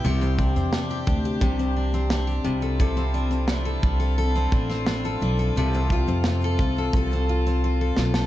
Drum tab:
SH |xxxxxxxxxx-xxxxx|xxxxxxxxxxxxxxxx|xxxxxxxxxx-x----|
SD |----o-------o---|----o------oo---|----o---------oo|
BD |--o---o-o-------|o-----o---o-----|--o---o-o-------|